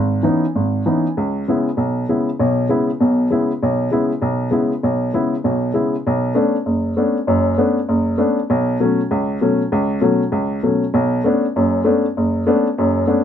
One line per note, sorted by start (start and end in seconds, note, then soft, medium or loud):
0.00 0.20 G#1 medium
0.23 0.44 E3 soft
0.23 0.44 B3 soft
0.23 0.44 C#4 soft
0.23 0.44 D#4 medium
0.55 0.81 G#1 medium
0.86 1.06 E3 soft
0.86 1.06 B3 soft
0.86 1.06 C#4 soft
0.86 1.06 D#4 soft
1.17 1.43 C#2 medium
1.48 1.68 C#3 soft
1.48 1.67 G#3 soft
1.48 1.68 B3 soft
1.48 1.68 E4 medium
1.77 2.03 B1 medium
2.09 2.28 C#3 soft
2.09 2.29 G#3 soft
2.09 2.29 B3 soft
2.09 2.29 E4 soft
2.39 2.65 B1 medium
2.39 2.65 B2 medium
2.69 2.89 C#3 soft
2.69 2.89 G#3 soft
2.69 2.90 B3 soft
2.69 2.90 E4 medium
3.00 3.26 B1 medium
3.00 3.26 B2 medium
3.30 3.50 C#3 soft
3.30 3.50 G#3 soft
3.30 3.51 B3 soft
3.30 3.51 E4 medium
3.63 3.88 B1 medium
3.91 4.11 C#3 soft
3.91 4.11 G#3 soft
3.91 4.12 B3 soft
3.91 4.12 E4 medium
4.22 4.48 B1 medium
4.51 4.72 C#3 soft
4.51 4.72 G#3 soft
4.51 4.72 B3 soft
4.51 4.72 E4 medium
4.83 5.09 B1 medium
5.14 5.34 C#3 soft
5.14 5.34 G#3 soft
5.14 5.34 B3 soft
5.14 5.34 E4 medium
5.44 5.70 B1 medium
5.44 5.70 B2 medium
5.74 5.94 C#3 soft
5.74 5.94 G#3 soft
5.74 5.94 B3 soft
5.74 5.94 E4 soft
6.07 6.32 B1 medium
6.35 6.55 A3 medium
6.35 6.55 B3 soft
6.35 6.55 C#4 soft
6.35 6.55 D4 medium
6.66 6.92 F#1 medium
6.97 7.17 A3 soft
6.97 7.17 B3 soft
6.97 7.17 C#4 soft
6.97 7.17 D4 medium
7.27 7.53 F#1 medium
7.27 7.53 F#2 medium
7.58 7.78 A3 medium
7.58 7.78 B3 soft
7.58 7.78 C#4 soft
7.58 7.78 D4 medium
7.89 8.14 F#1 medium
8.18 8.38 A3 soft
8.18 8.38 B3 soft
8.18 8.39 C#4 soft
8.18 8.39 D4 medium
8.50 8.76 B1 medium
8.80 9.00 B2 medium
8.80 9.00 F#3 medium
8.80 9.00 A3 soft
8.80 9.00 C#4 medium
9.11 9.37 C#2 medium
9.41 9.61 B2 soft
9.41 9.61 F#3 soft
9.41 9.61 A3 soft
9.41 9.61 C#4 medium
9.72 9.98 C#2 medium
10.01 10.21 B2 medium
10.01 10.22 F#3 medium
10.01 10.22 A3 medium
10.01 10.22 C#4 medium
10.32 10.58 C#2 medium
10.63 10.83 B2 soft
10.63 10.83 F#3 soft
10.63 10.83 A3 soft
10.63 10.83 C#4 medium
10.94 11.20 B1 medium
11.24 11.44 A3 medium
11.24 11.44 B3 soft
11.24 11.44 C#4 medium
11.24 11.45 D4 medium
11.56 11.81 F#1 medium
11.56 11.81 F#2 medium
11.85 12.05 A3 medium
11.85 12.05 B3 soft
11.85 12.05 C#4 soft
11.85 12.05 D4 medium
12.17 12.42 F#1 medium
12.47 12.66 A3 medium
12.47 12.66 B3 medium
12.47 12.66 C#4 medium
12.47 12.67 D4 medium
12.78 13.03 F#1 medium
12.78 13.03 F#2 medium
13.07 13.24 A3 medium
13.07 13.24 B3 soft
13.07 13.24 C#4 soft
13.07 13.24 D4 medium